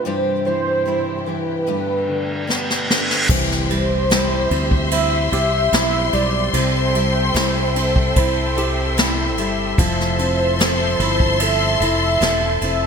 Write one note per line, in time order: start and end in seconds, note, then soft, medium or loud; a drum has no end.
0.05 0.46 G2 medium
0.05 1.66 G2 medium
0.05 1.63 G2 soft
0.05 1.66 C3 medium
0.05 1.66 E3 medium
0.05 0.46 E3 medium
0.05 3.26 G3 medium
0.05 0.46 G3 medium
0.05 0.46 C4 medium
0.05 1.66 E4 medium
0.05 0.45 E4 medium
0.05 3.26 G4 medium
0.05 0.44 G4 medium
0.05 0.43 C5 medium
0.45 1.26 E3 soft
0.45 0.84 G3 soft
0.45 0.85 C4 soft
0.45 0.86 E4 soft
0.45 0.86 G4 soft
0.45 1.29 C5 medium
0.86 1.26 G3 soft
0.86 1.27 C4 medium
0.86 1.65 E4 soft
0.86 1.26 E4 medium
0.86 1.25 G4 medium
1.26 1.66 E3 soft
1.26 1.67 G3 soft
1.26 1.67 C4 soft
1.26 1.68 E4 soft
1.26 1.67 G4 soft
1.26 2.89 B4 medium
1.67 2.48 G2 medium
1.67 3.26 G2 medium
1.67 3.28 B2 medium
1.67 2.48 D3 medium
1.67 2.46 A3 medium
1.67 3.28 A3 medium
1.67 2.47 B3 medium
1.67 3.28 D4 medium
1.67 2.48 D4 medium
1.67 2.50 G4 medium
1.67 reverse cymbal medium
2.08 2.88 D3 soft
2.47 2.88 A3 medium
2.47 2.89 B3 medium
2.47 3.27 B3 soft
2.47 2.88 D4 medium
2.47 2.87 G4 medium
2.47 snare soft
2.70 snare soft
2.88 3.28 D3 soft
2.88 3.29 A3 soft
2.88 3.30 B3 soft
2.88 3.30 D4 soft
2.88 3.29 G4 soft
2.88 snare medium
3.10 snare medium
3.29 4.47 C2 medium
3.29 3.70 C3 medium
3.29 6.50 E3 medium
3.29 3.70 G3 medium
3.29 3.70 C4 medium
3.29 3.70 E4 medium
3.29 6.51 G4 medium
3.29 3.68 G4 medium
3.29 4.88 C5 loud
3.29 6.51 C5 medium
3.29 6.51 E5 medium
3.29 9.74 C6 medium
3.29 kick loud
3.29 crash loud
3.29 impact medium
3.51 snare soft
3.69 5.28 G3 medium
3.69 4.10 C4 soft
3.69 4.10 E4 medium
3.69 4.10 G4 medium
3.69 ride medium
4.10 4.91 C3 medium
4.10 4.90 G3 medium
4.10 4.92 C4 medium
4.10 4.91 E4 medium
4.10 4.92 E4 medium
4.10 4.93 G4 medium
4.10 snare loud
4.10 ride medium
4.51 5.28 D2 medium
4.51 6.09 C4 medium
4.51 ride medium
4.71 kick medium
4.91 5.32 G3 medium
4.91 5.32 C4 medium
4.91 5.71 E4 medium
4.91 5.31 E4 medium
4.91 5.30 G4 medium
4.91 5.29 E5 loud
4.91 ride medium
5.31 5.70 C2 medium
5.31 5.72 C4 soft
5.31 5.73 E4 medium
5.31 5.72 G4 medium
5.31 6.50 G4 medium
5.31 6.15 E5 loud
5.31 ride medium
5.72 6.10 B1 loud
5.72 6.13 G3 medium
5.72 6.14 C4 medium
5.72 6.51 E4 medium
5.72 6.13 E4 medium
5.72 6.11 G4 medium
5.72 snare loud
5.72 ride medium
6.13 6.51 B1 medium
6.13 6.52 G3 medium
6.13 6.53 C4 soft
6.13 6.54 E4 medium
6.13 6.53 G4 medium
6.13 6.55 D5 loud
6.13 ride medium
6.53 7.31 C2 loud
6.53 6.94 C3 medium
6.53 9.74 C3 medium
6.53 6.94 G3 medium
6.53 6.95 C4 medium
6.53 6.94 E4 medium
6.53 9.75 A4 medium
6.53 6.92 A4 medium
6.53 8.16 C5 loud
6.53 12.87 E5 medium
6.53 9.75 G5 medium
6.53 ride medium
6.94 8.53 G3 medium
6.94 7.34 C4 soft
6.94 7.34 E4 medium
6.94 7.35 A4 medium
6.94 ride medium
7.34 8.12 C2 loud
7.34 8.16 C3 medium
7.34 8.14 G3 medium
7.34 8.16 C4 medium
7.34 8.17 E4 medium
7.34 8.15 E4 medium
7.34 8.17 A4 medium
7.34 snare loud
7.34 ride medium
7.76 9.34 C4 medium
7.76 ride medium
7.96 kick medium
8.15 9.38 C2 medium
8.15 8.56 G3 medium
8.15 8.57 C4 medium
8.15 8.96 E4 medium
8.15 8.56 E4 medium
8.15 8.55 A4 medium
8.15 9.34 C5 loud
8.15 kick medium
8.15 ride medium
8.56 8.97 C4 soft
8.56 8.97 E4 medium
8.56 9.75 G4 medium
8.56 8.97 A4 medium
8.56 ride medium
8.97 9.38 C3 medium
8.97 9.38 G3 medium
8.97 9.38 C4 medium
8.97 9.76 E4 medium
8.97 9.38 E4 medium
8.97 9.36 A4 medium
8.97 snare loud
8.97 ride medium
9.37 9.75 G1 medium
9.37 9.77 G3 medium
9.37 9.77 C4 medium
9.37 9.78 E4 medium
9.37 9.78 A4 medium
9.37 ride medium
9.78 10.96 F1 loud
9.78 10.19 F3 medium
9.78 12.87 F3 medium
9.78 10.19 C4 medium
9.78 10.19 E4 loud
9.78 12.87 A4 medium
9.78 10.17 A4 loud
9.78 11.41 C5 loud
9.78 12.87 A5 medium
9.78 12.87 C6 loud
9.78 kick loud
9.78 ride medium
10.00 snare soft
10.19 11.77 C4 medium
10.19 10.59 C4 soft
10.19 10.59 E4 soft
10.19 10.59 A4 medium
10.19 ride medium
10.59 11.39 F3 medium
10.59 11.40 C4 medium
10.59 11.41 E4 medium
10.59 11.40 A4 medium
10.59 11.41 A4 medium
10.59 snare loud
10.59 ride medium
11.00 11.77 G1 loud
11.00 11.80 E4 medium
11.00 ride medium
11.20 kick medium
11.40 11.81 F3 medium
11.40 11.81 C4 medium
11.40 11.80 E4 medium
11.40 12.21 A4 medium
11.40 11.79 A4 medium
11.40 11.79 E5 loud
11.40 ride medium
11.79 12.18 F1 loud
11.79 12.20 C4 soft
11.79 12.21 E4 medium
11.79 12.87 E4 medium
11.79 12.21 A4 medium
11.79 12.57 E5 loud
11.79 ride medium
12.21 12.59 E1 loud
12.21 12.62 F3 medium
12.21 12.62 C4 loud
12.21 12.61 E4 loud
12.21 12.87 A4 medium
12.21 12.60 A4 medium
12.21 snare loud
12.21 ride medium
12.61 12.87 F1 medium
12.61 12.87 C4 soft
12.61 12.87 E4 medium
12.61 12.87 A4 medium
12.61 12.87 E5 medium
12.61 ride medium